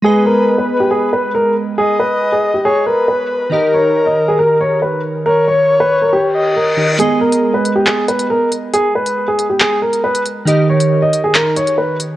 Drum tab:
HH |----------------|----------------|----------------|----------------|
CP |----------------|----------------|----------------|----------------|

HH |x--x--x-x-xx--x-|x--x--x----x-xx-|x--x--x-x-xx--x-|
CP |--------x-------|--------x-------|--------x-------|